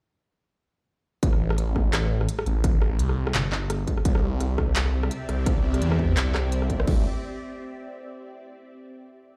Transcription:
1.23 2.27 A1 medium
1.23 kick loud
1.23 closed hi-hat medium
1.33 cross-stick medium
1.50 cross-stick medium
1.58 closed hi-hat medium
1.76 kick medium
1.76 cross-stick medium
1.93 cross-stick medium
1.93 clap loud
1.93 closed hi-hat medium
2.21 cross-stick medium
2.29 closed hi-hat medium
2.39 cross-stick medium
2.46 2.98 A1 loud
2.46 closed hi-hat soft
2.64 kick loud
2.64 cross-stick medium
2.64 closed hi-hat medium
2.82 cross-stick medium
2.99 3.33 C2 medium
2.99 closed hi-hat medium
3.09 cross-stick medium
3.27 cross-stick medium
3.35 3.86 G1 loud
3.35 clap loud
3.35 closed hi-hat medium
3.52 cross-stick medium
3.52 clap medium
3.70 cross-stick medium
3.70 closed hi-hat medium
3.87 kick medium
3.87 closed hi-hat soft
3.98 cross-stick medium
4.05 5.10 C2 medium
4.05 6.85 C4 medium
4.05 6.85 G4 medium
4.05 6.85 D5 medium
4.05 6.85 E5 medium
4.05 kick loud
4.05 closed hi-hat medium
4.15 cross-stick medium
4.40 cross-stick medium
4.40 closed hi-hat medium
4.58 kick medium
4.58 cross-stick medium
4.76 clap loud
4.76 closed hi-hat medium
4.86 cross-stick medium
5.03 cross-stick medium
5.11 closed hi-hat medium
5.29 5.80 C2 loud
5.29 cross-stick soft
5.29 closed hi-hat soft
5.46 kick loud
5.46 cross-stick medium
5.46 closed hi-hat medium
5.74 cross-stick soft
5.74 closed hi-hat soft
5.82 6.16 E2 medium
5.82 closed hi-hat medium
5.92 cross-stick medium
5.99 kick medium
6.17 6.86 C2 medium
6.17 cross-stick medium
6.17 clap loud
6.17 closed hi-hat medium
6.35 cross-stick medium
6.35 clap medium
6.52 closed hi-hat medium
6.62 cross-stick medium
6.70 kick medium
6.70 closed hi-hat soft
6.80 cross-stick medium
6.87 7.04 A1 medium
6.87 kick loud
6.87 crash medium

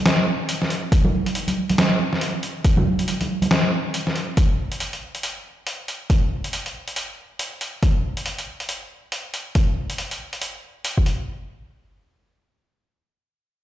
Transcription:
0.06 snare loud
0.06 closed hi-hat medium
0.49 closed hi-hat medium
0.62 snare soft
0.70 closed hi-hat medium
0.92 kick loud
0.92 closed hi-hat medium
1.05 high conga medium
1.26 closed hi-hat soft
1.35 closed hi-hat medium
1.48 closed hi-hat soft
1.48 high conga medium
1.70 closed hi-hat soft
1.70 high conga medium
1.78 snare loud
1.78 closed hi-hat medium
2.13 snare soft
2.21 closed hi-hat medium
2.43 closed hi-hat soft
2.65 kick loud
2.65 closed hi-hat medium
2.77 high conga loud
2.77 low conga medium
2.99 closed hi-hat soft
3.08 closed hi-hat medium
3.21 closed hi-hat soft
3.21 high conga medium
3.42 closed hi-hat soft
3.42 high conga medium
3.51 snare loud
3.51 closed hi-hat medium
3.94 closed hi-hat medium
4.07 snare soft
4.16 closed hi-hat soft
4.37 kick loud
4.37 closed hi-hat medium
4.72 closed hi-hat soft
4.80 closed hi-hat medium
4.93 closed hi-hat soft
5.15 closed hi-hat soft
5.23 closed hi-hat medium
5.67 closed hi-hat medium
5.88 closed hi-hat soft
6.10 kick loud
6.10 closed hi-hat medium
6.44 closed hi-hat soft
6.53 closed hi-hat medium
6.66 closed hi-hat soft
6.88 closed hi-hat soft
6.96 closed hi-hat medium
7.39 closed hi-hat medium
7.61 closed hi-hat soft
7.83 kick loud
7.83 closed hi-hat medium
8.17 closed hi-hat soft
8.26 closed hi-hat medium
8.38 closed hi-hat soft
8.60 closed hi-hat soft
8.69 closed hi-hat medium
9.12 closed hi-hat medium
9.34 closed hi-hat soft
9.55 kick loud
9.55 closed hi-hat medium
9.90 closed hi-hat soft
9.98 closed hi-hat medium
10.11 closed hi-hat soft
10.33 closed hi-hat soft
10.42 closed hi-hat medium
10.85 closed hi-hat medium
10.98 kick medium
11.06 closed hi-hat medium

